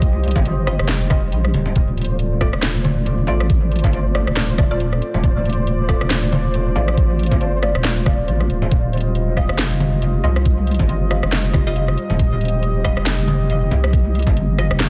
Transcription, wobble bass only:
Already playing: C2
0.36 G1
0.80 F1
1.32 A#1
1.54 D#1
1.76 D1
2.54 D#1
3.28 A1
3.84 G1
4.27 D#1
5.14 D1
5.24 D1
6.01 D#1
6.76 A1
7.32 G1
7.75 D#1
8.28 A1
8.50 D1
8.72 D#1
9.49 F1
10.24 C2
10.80 G1
11.23 F1
12.10 D#1
12.20 D#1
12.97 F1
13.71 C2
14.27 G1
14.71 F1

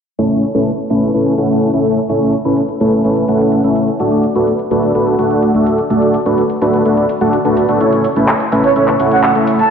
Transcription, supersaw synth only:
0.19 A3 C#4 E4 A4 C#5
0.54 A3 C#4 E4 A4 B4
0.90 A3 C#4 E4 A4 B4
1.14 A3 C#4 E4 A4 B4
1.38 A3 C#4 E4 A4 F#5
1.73 A3 C#4 E4 A4 E5
2.09 A3 C#4 E4 A4 C#5
2.45 A3 C#4 E4 A4 B4
2.81 A3 C#4 E4 A4 B4
3.04 A3 C#4 E4 A4 B4
3.28 A3 C#4 E4 A4 F#5
3.64 A3 C#4 E4 A4 E5
4.00 A3 D4 F#4 A4 D5
4.35 A3 D4 F#4 A4 B4
4.71 A3 D4 F#4 A4 B4
4.95 A3 D4 F#4 A4 B4
5.19 A3 D4 F#4 A4 F#5
5.54 A3 D4 F#4 A4 E5
5.90 A3 D4 F#4 A4 D5
6.26 A3 D4 F#4 A4 B4
6.62 A3 D4 F#4 A4 B4
6.85 A3 D4 F#4 A4 B4
7.21 A3 D4 F#4 A4 F#5
7.45 A3 D4 F#4 A4 B4
7.69 A3 D4 F#4 A4 B4
7.81 A3 C#4 E4 A4 C#5
8.16 A3 C#4 E4 A4 B4
8.52 A3 C#4 E4 A4 B4
8.76 A3 C#4 E4 A4 B4
9.00 A3 C#4 E4 A4 F#5
9.35 A3 C#4 E4 A4 E5

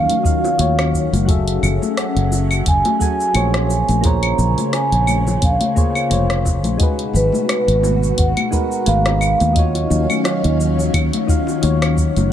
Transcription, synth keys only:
Already playing: D#3 D#4 F4 F#4 C#5
0.23 D#3 D#4 F4 F#4 F5
0.58 D#3 D#4 F4 F#4 C#5
1.25 F#3 F#4 G#4
1.29 A4 E5
2.99 F#3 F#4 G#4 A4 G#5
3.34 A#3 F4 G#4 C5 C#5
4.01 A#3 F4 G#4
4.05 C5 C#5
5.75 A#3 F4 G#4 C5 C#5
6.10 A#3 F4 G#4 C5 C#5
6.77 G#3 D#4 F#4
6.81 G#4 B4
8.51 G#3 D#4 F#4 A#4 B4
8.86 G#3 D#4 F#4 A#4 B4
9.53 D#3 D#4 F4
9.57 F#4 C#5
11.27 D#3 D#4 F4 F#4 F5
11.61 D#3 D#4 F4 F#4 C#5
12.29 F#3

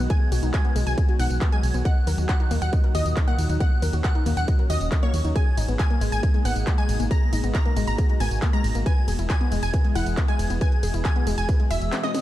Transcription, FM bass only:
0.32 B1
0.43 B1
0.76 B1
0.87 B1
1.20 B1
1.30 B1
1.63 B1
1.74 B1
2.07 D#2
2.18 D#2
2.51 D#2
2.62 D#2
2.95 D#2
3.06 D#2
3.38 D#2
3.49 D#2
3.82 D#2
3.93 D#2
4.26 D#2
4.37 D#2
4.70 D#2
4.81 D#1
5.14 D#2
5.25 D#2
5.58 G#1
5.68 G#1
6.01 G#1
6.12 G#1
6.45 G#1
6.56 G#1
6.89 G#1
7.00 G#1
7.33 G#1
7.44 G#1
7.77 G#1
7.87 G#1
8.20 G#1
8.31 G#1
8.64 G#1
8.75 G#1
9.08 E1
9.19 E1
9.52 E1
9.63 E1
9.96 E1
10.07 E1
10.39 E1
10.50 E1
10.83 E1
10.94 E1
11.27 E1
11.38 E1
11.71 E1
11.82 E1

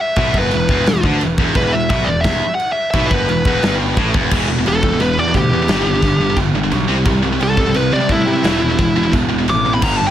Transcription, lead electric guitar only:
0.01 E5
0.19 E5
0.38 B4
1.56 B4
1.72 E5
1.90 E5
2.04 D5
2.21 E5
2.55 F#5
2.72 E5
2.91 E5
3.07 B4
4.68 A4
5.01 B4
5.19 D5
5.35 G4
7.43 A4
7.75 B4
7.94 D5
8.12 E4
9.50 D6
9.74 B5
9.84 A#5
9.96 A5
10.07 G5

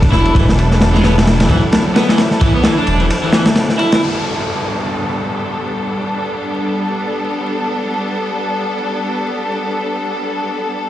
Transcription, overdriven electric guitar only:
0.12 E4
0.35 E3
0.94 G#3
1.04 B3
1.50 E3
1.96 B3
2.09 E3
2.42 E3
2.55 B3
2.64 E3
2.77 D4
3.00 E3
3.23 E3
3.33 E3
3.79 E4

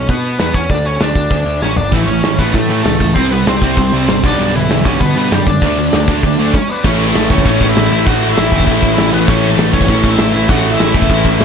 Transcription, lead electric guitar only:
0.09 B3 B4
0.39 B3 B4
0.54 C#4 C#5
0.70 D4 D5
0.86 C#4 C#5
1.02 D4 D5
1.62 C#4 C#5
1.77 D4 D5
1.93 E3 E4
2.06 C#4 C#5
2.39 B3 B4
2.54 A3 A4
2.83 A3 A4
3.14 C4 C5
3.31 B3 B4
3.48 C4 C5
4.10 C4 C5
4.25 D4 D5
4.54 E3 E4
4.85 C#4 C#5
5.00 B3 B4
5.16 B3 B4
5.32 G3 G4
5.47 D4 D5
6.53 C#4 C#5
6.69 B3 D4 B4 D5
6.85 C#4 C#5
7.08 A3 A4
7.30 C#4 C#5
7.46 C#4 C#5
7.69 E4 E5
7.91 E4 E5
8.06 F#4 F#5
8.29 E4 E5
8.38 E4 E5
9.13 B3 B4
9.27 C#4 C#5
9.51 A3 A4
9.73 C#4 C#5
9.89 C#4 C#5
10.10 E4 E5
10.34 E4 E5
10.49 F#4 F#5
10.72 E4 E5
10.81 E4 E5

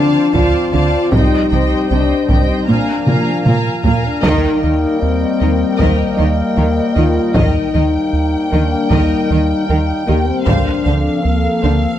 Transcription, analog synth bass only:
Already playing: D3
0.34 D2
0.75 D2
1.13 C2
1.52 C2
1.91 C2
2.29 C2
2.68 A#3
3.08 A#3
3.46 A#2
3.86 A#2
4.25 D#2
4.64 D#2
5.02 D#2
5.41 D#2
5.80 D#2
6.19 D#2
6.57 D#2
6.96 D#2
7.35 D#2
7.74 D#2
8.13 D#2
8.52 D#2
8.90 D#2
9.31 D#2
9.69 D#2
10.09 D#2
10.46 D2
10.86 D2
11.25 D2
11.64 D2

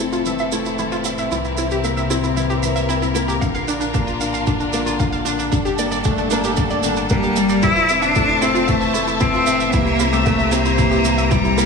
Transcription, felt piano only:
Already playing: A3
0.00 C4
0.26 E3
0.52 A3
0.79 E3
1.05 C4
1.31 E3
1.58 C4
1.84 A#3
2.11 C4
2.37 E3
2.63 E3
2.90 C4
3.16 A#3
3.43 D3
3.68 D4
3.95 A#3
4.21 D4
4.48 D3
4.74 A#3
5.00 D3
5.27 D4
5.52 D3
5.79 A#3
6.06 A3
6.32 A#3
6.58 D3
6.85 D3
7.11 A#3
7.37 G3
7.64 E3
7.90 C4
8.16 A3
8.43 C4
8.69 E3
8.95 A3
9.21 E3
9.47 C4
9.74 E3
10.00 C4
10.26 A#3
10.53 C4
10.79 E3
11.05 E3
11.31 C4
11.58 A#3

